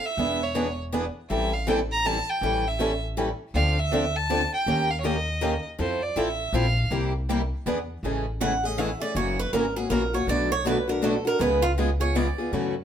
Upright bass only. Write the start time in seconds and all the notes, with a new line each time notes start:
0.17 E1
1.30 A1
2.41 A1
3.54 D2
4.66 D#2
5.79 F2
6.16 A1
6.53 A#1
6.91 C2
7.66 E2
8.03 A1
9.15 F#1
9.53 G#1
9.90 A#1
10.27 B1
11.40 C#2
12.52 F#2